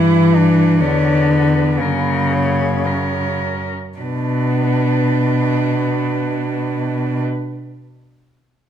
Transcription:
Already playing: G2 E3 E4 B4
0.36 D4
0.80 E2 D3 C#4 B4
1.28 B3
1.79 F#2 C#3 A#3 A#4
2.32 C#5
2.84 C#4 A#4
3.98 B2 D4 B4

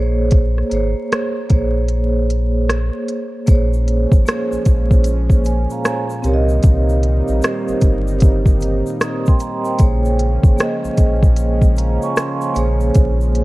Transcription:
Already playing: A#1 A#3 G#4 C5 C#5
0.31 kick, closed hi-hat
0.58 cross-stick
0.70 G#1 A#3 G#4 C5, closed hi-hat
0.75 C#5
1.12 cross-stick, closed hi-hat
1.49 A#1 A#3 G#4 C5, kick, closed hi-hat
1.54 C#5
1.88 closed hi-hat
2.30 closed hi-hat
2.69 cross-stick, closed hi-hat
3.08 closed hi-hat
3.47 A#1 A#2 F3 G#3 A#3 C#4 G#4 C5, kick, closed hi-hat, shaker
3.52 C#5
3.73 shaker
3.88 closed hi-hat
4.12 G#1, kick, shaker
4.26 A#3 G#4 C5, cross-stick, closed hi-hat, shaker
4.31 C#5
4.52 A#1, shaker
4.65 A#1, kick, closed hi-hat, shaker
4.91 kick, shaker
5.04 closed hi-hat, shaker
5.30 kick, shaker
5.45 C#5 G#5, closed hi-hat, shaker
5.70 F5 A#5, shaker
5.85 C#5 G#5, cross-stick, closed hi-hat, shaker
6.10 C5 F5, shaker
6.22 C2 D#3 G3 C4 D#4 G4 A#4, closed hi-hat, shaker
6.27 C#5
6.34 D#5
6.49 shaker
6.63 C2, kick, closed hi-hat, shaker
6.89 shaker
7.03 closed hi-hat
7.28 A#1, shaker
7.41 C4 G4 A#4, cross-stick, closed hi-hat, shaker
7.46 C5
7.68 G1, shaker
7.81 G1, kick, closed hi-hat, shaker
8.07 shaker
8.20 kick, closed hi-hat, shaker
8.46 kick, shaker
8.60 closed hi-hat, shaker
8.86 shaker
9.01 A#5 D#6, cross-stick, closed hi-hat, shaker
9.26 G5 C6, kick, shaker
9.39 D#5 A#5, closed hi-hat, shaker
9.65 C5 G5, shaker
9.78 A#1 C#3 F3 G#3 A#3 C#4 G#4 C5, kick, closed hi-hat, shaker
9.83 C#5
10.05 shaker
10.19 closed hi-hat
10.43 G#1, kick, shaker
10.57 A#3 G#4 C5, cross-stick, closed hi-hat, shaker
10.62 D#5
10.84 A#1, shaker
10.97 A#1, kick, closed hi-hat, shaker
11.23 kick, shaker
11.36 closed hi-hat, shaker
11.62 kick, shaker
11.76 F5 A#5, closed hi-hat, shaker
12.02 G#5 C#6, shaker
12.16 C6, cross-stick, closed hi-hat, shaker
12.41 C#5 G#5, shaker
12.54 A#1 A#3 G#4 C5, closed hi-hat, shaker
12.59 C#5
12.80 shaker
12.94 A#1, kick, closed hi-hat, shaker
13.21 shaker
13.35 closed hi-hat

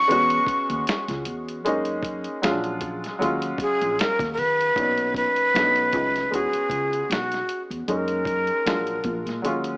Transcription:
Already playing: A3 C#6
0.08 E2 G#3 B3 C#4, closed hi-hat
0.12 F#4
0.30 closed hi-hat
0.47 muted upright bass stroke, kick, closed hi-hat
0.70 D#2, closed hi-hat
0.87 finger snap, snare, closed hi-hat
1.08 C#2, snare, closed hi-hat
1.25 E2, closed hi-hat
1.48 closed hi-hat
1.65 F#2 G#3 A#3 C#4 D#4, closed hi-hat
1.85 closed hi-hat
2.03 kick, closed hi-hat
2.24 closed hi-hat
2.42 A#1 F#3 G#3 C#4 F4, finger snap, snare, closed hi-hat
2.50 D4
2.64 closed hi-hat
2.81 kick, closed hi-hat
3.04 snare, closed hi-hat
3.19 D#2 F#3 G#3 C#4, closed hi-hat
3.24 F4
3.42 closed hi-hat
3.58 G#4, muted upright bass stroke, kick, closed hi-hat
3.81 A#1, closed hi-hat
3.99 A#4, finger snap, muted upright bass stroke, snare, closed hi-hat
4.19 D#2, kick, snare, closed hi-hat
4.33 A#4
4.37 D#3 B4, open hi-hat
4.61 closed hi-hat
4.76 B1 A#2 F#3 C#4 D#4, kick, closed hi-hat
4.98 closed hi-hat
5.14 B4, kick, closed hi-hat
5.36 closed hi-hat
5.54 B1 F#3 A3 C#4 D4, finger snap, snare, closed hi-hat
5.63 D#4
5.76 closed hi-hat
5.93 C#2, kick, closed hi-hat
6.16 snare, closed hi-hat
6.31 E2 G#3 B3 C#4, closed hi-hat
6.35 F#4 G#4
6.53 muted upright bass stroke, closed hi-hat
6.70 C#2, kick, closed hi-hat
6.93 closed hi-hat
7.10 B1 F#4, finger snap, snare, closed hi-hat
7.32 snare, closed hi-hat
7.49 closed hi-hat
7.70 E2, closed hi-hat
7.88 F#2 G#3 A#3 C#4 D#4 A#4, closed hi-hat
8.08 closed hi-hat
8.25 kick, closed hi-hat
8.47 closed hi-hat
8.66 A#1 F#3 G#3 D4 F4, finger snap, snare, closed hi-hat
8.87 closed hi-hat
9.04 A#1, kick, closed hi-hat
9.26 A#2, snare, closed hi-hat
9.42 D#2 F#3 G#3 C#4, closed hi-hat
9.47 F4
9.64 closed hi-hat

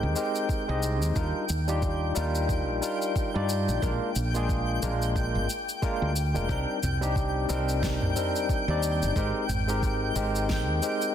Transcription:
Already playing: G#3 C4 D#4 G4 A#4 G5 G6
0.03 D#2
0.15 G#3 C4 D#4 G4 A#4, shaker
0.35 shaker
0.49 kick, shaker
0.68 C2 G#3 C4 D#4 G4 D#5
0.83 shaker
1.02 D#2, shaker
1.15 D#2 G3 D4 D#4 F4 A#4, kick, shaker
1.49 D#2, shaker
1.67 G3 D4 D#4 F4 G4, shaker
1.82 kick, shaker
2.15 D#2 G3 D4 D#4 F4 A#4, shaker
2.35 shaker
2.49 kick, shaker
2.69 A#1
2.82 G3 D4 D#4 F4 A#4, shaker
3.02 shaker
3.16 kick, shaker
3.34 G2 G3 D4 D#4 F4 D5
3.49 shaker
3.69 A#1, shaker
3.82 A#1 G#3 A#3 D4 F4 A#4, kick, shaker
4.16 A#1, shaker
4.34 G#3 A#3 D4 F4 G#4, shaker
4.49 kick, shaker
4.82 A#1 G#3 A#3 D4 F4 A#4, shaker
5.02 shaker
5.16 kick, shaker
5.35 G#1
5.50 shaker
5.69 shaker
5.82 G#3 A#3 D4 F4 A#4, kick, shaker
6.02 D2
6.16 shaker
6.34 F1 G#3 A#3 D4 F4 A#4, shaker
6.49 C2 G3 C4 D4 D#4 A#4, kick, shaker
6.83 C2, mid tom, shaker
7.01 G3 C4 D4 D#4 G4, shaker
7.16 kick, shaker
7.48 C2 G3 C4 D4 D#4 A#4, shaker
7.69 shaker
7.83 kick, snare, shaker
8.01 A#1, mid tom
8.16 G3 C4 D4 D#4 A#4, mid tom, shaker
8.36 shaker
8.49 kick, shaker
8.68 D#2 G3 C4 D4 D#4 D5
8.83 shaker
9.02 G1, shaker
9.16 G#1 G#3 C4 D#4 G4 A#4, kick, shaker
9.49 G#1, mid tom, shaker
9.68 G#3 C4 D#4 G4 A#4, shaker
9.83 kick, shaker
10.15 G#1 G#3 C4 D#4 G4 A#4, shaker
10.35 shaker
10.49 kick, snare, shaker
10.68 D#2
10.82 G#3 C4 D#4 G4 A#4, shaker
11.02 shaker

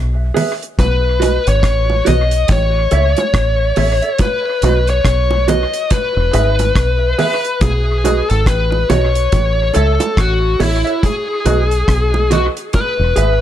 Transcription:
Already playing: B1
0.34 G#4 B4 E5, open hi-hat, low bongo
0.62 closed hi-hat
0.79 B1 B4, kick, closed hi-hat, high bongo
1.20 F#4 B4 D#5, closed hi-hat, high bongo
1.47 G#1 C#5, closed hi-hat
1.63 A1, kick, cross-stick, closed hi-hat
1.90 high bongo
2.05 B1 F#4 B4 D#5, closed hi-hat, low bongo
2.31 closed hi-hat
2.48 A1 C#5, kick, closed hi-hat, high bongo
2.91 C#2 A4 C#5 E5, closed hi-hat, high bongo
3.17 closed hi-hat, high bongo
3.34 A1, kick, cross-stick, closed hi-hat
3.76 A1 A4 C#5 E5, open hi-hat, low bongo
4.02 A4 C#5 E5, closed hi-hat
4.19 B4, kick, closed hi-hat, high bongo
4.62 B1 F#4 B4 D#5, closed hi-hat, high bongo
4.87 C#5, closed hi-hat
5.05 B1, kick, cross-stick, closed hi-hat
5.31 high bongo
5.48 F#4 B4 D#5, closed hi-hat, low bongo
5.74 closed hi-hat
5.91 B4, kick, closed hi-hat, high bongo
6.17 E1
6.33 G#1 G#4 B4 E5, closed hi-hat, high bongo
6.59 closed hi-hat, high bongo
6.76 B1, kick, cross-stick, closed hi-hat
7.18 G#4 B4 E5, open hi-hat, low bongo
7.45 closed hi-hat
7.61 B1 G#4, kick, closed hi-hat, high bongo
8.04 F#4 B4 D#5, closed hi-hat, high bongo
8.30 G#1 A4, closed hi-hat
8.46 A1 B4, kick, cross-stick, closed hi-hat
8.72 high bongo
8.90 B1 F#4 B4 C#5 D#5, closed hi-hat, low bongo
9.15 closed hi-hat
9.32 A1, kick, closed hi-hat, high bongo
9.74 C#2 A4 C#5 E5, closed hi-hat, high bongo
10.00 closed hi-hat, high bongo
10.17 A1 F#4, kick, cross-stick, closed hi-hat
10.60 A1 E4 A4 C#5 E5, open hi-hat, low bongo
10.84 A4 C#5 E5, closed hi-hat
11.03 G#4, kick, closed hi-hat, high bongo
11.46 B1 F#4 B4 D#5, closed hi-hat, high bongo
11.71 closed hi-hat
11.88 B1, kick, cross-stick, closed hi-hat
12.14 high bongo
12.31 F#4 B4 D#5, closed hi-hat, low bongo
12.57 closed hi-hat
12.73 B4, kick, closed hi-hat, high bongo
12.99 E1
13.16 G#1 G#4 B4 E5, closed hi-hat, high bongo

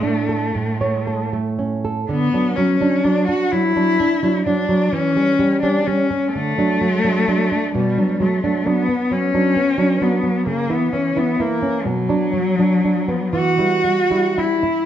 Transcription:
Already playing: A2 A3 F#5
0.03 D4
0.29 A4
0.55 A2
0.81 C#5
1.07 A4
1.33 A3
1.59 C#4
1.85 A4
2.09 D3 B3
2.33 F#3 D4
2.56 F#3 C#4
2.80 F#3 D4
3.04 F#3 D4
3.28 D4 F#4
3.52 F#3 E4
3.76 F#3 D4
4.00 D4
4.23 F#3 D4
4.46 F#3 D4
4.69 F#3
4.93 E3 C#4
5.16 G3 C#4
5.39 G3
5.62 G3 C#4 D4
5.87 G3 C#4
6.11 C#4
6.34 D3 A3
6.58 F#3 D4
6.81 F#3
7.04 F#3 D4
7.28 F#3 D4
7.52 D4
7.75 B2 G3
7.98 F#3 D4
8.20 F#3 A3
8.44 F#3 D4
8.66 F#3 B3 D4
8.89 B3
9.11 F#3 C#4
9.34 F#3 D4
9.56 B3
9.78 F#3 D4
10.02 F#3 B3 D4
10.23 F#3
10.46 C#3 A#3
10.69 E3 B3 E4
10.93 E3 C#4
11.16 E3 B3 E4
11.40 E3 A#3 E4
11.62 C#4
11.85 B2 F#3
12.09 F#3 D4
12.33 F#3
12.59 F#3 D4
12.84 F#3 D4
13.08 B3
13.33 E3 F#4
13.58 G3 E4
13.84 G3
14.11 G3 E4
14.37 G3 E4
14.63 E4

